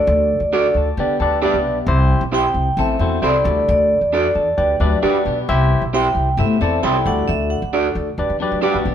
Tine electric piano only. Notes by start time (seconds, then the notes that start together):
Already playing: D4 F#4 A4 D5
0.54 D4 F#4 A4 D5
0.77 A5
0.99 D4 G4 B4 D5 G5
1.22 D4 G4 B4 D5
1.43 D4 G4 B4 D5 E5
1.88 C4 E4 G4 C5
2.33 C4 E4 G4 C5
2.78 C4 E4 A4 C5
3.00 C4 E4 A4 C5
3.22 C4 E4 A4 C5
3.44 D4 F#4 A4 D5
4.13 D4 F#4 A4 D5
4.36 A5
4.57 D4 G4 B4 D5 G5
4.80 D4 G4 B4 D5 E5
5.03 D4 G4 A#4 D5
5.08 B4
5.49 E4 G4 C5 E5
5.94 E4 G4 C5 E5
6.39 E4 A4 C5 E5
6.62 E4 A4 C5 D5
6.85 E4 A4 C5 E5
7.06 D4 F#4 A4 D5
7.74 D4 F#4 A4 D5
8.19 D4 G4 B4 D5
8.42 D4 G4 B4 D5
8.63 D4 G4 B4 D5